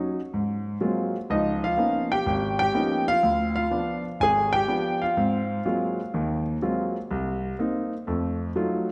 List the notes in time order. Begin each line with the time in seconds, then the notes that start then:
Already playing: F#3 C#4 D#4
0.34 G#2
0.81 F#3 G#3 A#3 C4 F4
1.30 C#2 F3 D#4 D#5
1.64 F4 F5
1.77 F3 A#3 B3 C#4 D#4
2.12 G4 G5
2.26 G#1
2.59 G4 G5
2.74 F3 A#3 B3 C#4 D#4
3.08 F4 F5
3.23 D2
3.56 F4 F5
3.71 F3 B3 D4
4.20 G#1 G#4 G#5
4.53 G4 G5
4.68 F3 B3 D4
5.02 F4 F5
5.17 G#2 C4
5.66 F#3 G#3 A#3 C4 F4
6.14 D#2 D#3
6.62 F#3 G#3 A#3 C4 F4
7.11 C2
7.59 A#3 C4 D#4
8.07 F2 A3
8.56 F#3 A3 D#4 F4